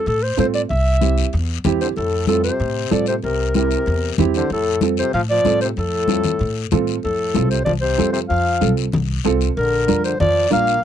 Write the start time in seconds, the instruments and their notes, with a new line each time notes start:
0.06 upright bass A2, clarinet A4, high conga, long guiro
0.23 clarinet C5
0.37 upright bass A2, upright piano C4 F4 A4, clarinet C5, high conga, short guiro
0.54 clarinet D5, short guiro
0.69 upright bass C2, clarinet E5, high conga, long guiro
1.01 upright piano C4 E4 G4, high conga, short guiro
1.18 short guiro
1.33 upright bass E2, high conga, long guiro
1.64 upright bass E2, upright piano C4 E4 G4, high conga, low conga, short guiro
1.81 trombone D3, clarinet C5, short guiro
1.96 upright bass F2, trombone A2, clarinet A4, high conga, long guiro
2.27 trombone A2, upright piano C4 F4 A4, clarinet A4, high conga, short guiro
2.43 trombone C3, clarinet C5, short guiro
2.60 upright bass A2, high conga, long guiro
2.91 upright bass A2, trombone F3, upright piano C4 F4 A4, clarinet D5, high conga, short guiro
3.06 trombone C3, clarinet C5, short guiro
3.22 upright bass C2, trombone C3, clarinet A#4, high conga, long guiro
3.54 trombone C3, upright piano C4 E4 G4, clarinet A#4, high conga, short guiro
3.71 short guiro
3.86 upright bass E2, high conga, long guiro
4.18 upright bass E2, upright piano C4 E4 G4, high conga, low conga, short guiro
4.34 trombone D3, clarinet C5, short guiro
4.50 upright bass F2, trombone A2, clarinet A4, high conga, long guiro
4.81 upright piano C4 F4 A4, high conga, short guiro
4.97 trombone C3, clarinet C5, short guiro
5.13 upright bass A2, trombone F3, clarinet F5, high conga, long guiro
5.30 trombone F3, clarinet D5
5.45 upright bass A2, upright piano C4 F4 A4, high conga, short guiro
5.61 trombone C3, clarinet C5, short guiro
5.76 upright bass F2, trombone A2, clarinet A4, high conga, long guiro
6.08 upright piano C4 F4 A4, high conga, short guiro
6.24 low conga, short guiro
6.39 upright bass A2, high conga, long guiro
6.71 upright bass A2, upright piano C4 F4 A4, high conga, low conga, short guiro
6.87 short guiro
7.03 upright bass F2, trombone A2, clarinet A4, long guiro
7.35 upright bass C2, upright piano C4 F4 A4, high conga, short guiro
7.50 trombone C3, clarinet C5, short guiro
7.65 upright bass C2, trombone F3, clarinet D5, low conga, long guiro
7.81 trombone C3, clarinet C5
7.98 upright bass F2, upright piano C4 F4 A4, high conga, short guiro
8.12 trombone C3, clarinet C5, short guiro
8.29 upright bass F2, trombone F3, clarinet F5, long guiro
8.61 upright bass C2, upright piano C4 F4 A4, high conga, short guiro
8.77 short guiro
8.92 upright bass C2, low conga, long guiro
9.24 upright bass C2, upright piano C4 F4 A4, high conga, short guiro
9.41 short guiro
9.57 upright bass A#1, trombone D3, clarinet A#4, long guiro
9.87 upright bass F2, upright piano D4 F4 A#4, high conga, short guiro
10.04 trombone D3, clarinet C5, short guiro
10.20 upright bass F2, trombone F3, clarinet D5, low conga, long guiro
10.50 upright bass A#1, trombone A#3, upright piano D4 F4 A#4, clarinet F5, high conga, short guiro
10.67 short guiro